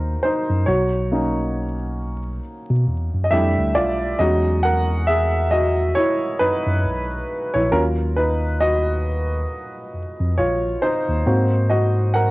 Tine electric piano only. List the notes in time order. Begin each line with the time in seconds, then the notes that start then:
Already playing: D#2
0.50 F#2
0.67 B1
2.70 B2
2.87 E2
3.14 F#2
3.32 F2
3.58 D2
3.75 B1
4.19 E2
6.41 F#2
6.66 F#2
6.85 B1
7.55 A#1
7.72 D#2
9.94 F2
10.20 F2
10.38 A#1
11.09 D#2
11.27 G#2